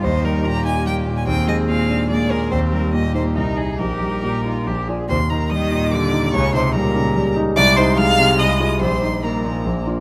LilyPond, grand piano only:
\new Staff \with { instrumentName = "Grand piano" } { \clef bass \time 3/4 \key ees \major \tempo 4 = 144 ees,8 g8 bes,8 ees'8 g8 bes,8 | ees,8 aes8 bes,8 d'8 aes8 bes,8 | ees,8 g8 bes,8 ees'8 c,8 <ees' ees''>8 | bes,,8 g8 bes,8 ees'8 bes,,8 <f' d''>8 |
ees,8 ees'8 g8 bes,8 g8 ees'8 | des,8 ees'8 g8 des8 g8 ees'8 | c,8 ees'8 aes8 c8 c,8 <f' aes'>8 | bes,,8 ees'8 bes8 bes,8 bes,,8 <d' f'>8 | }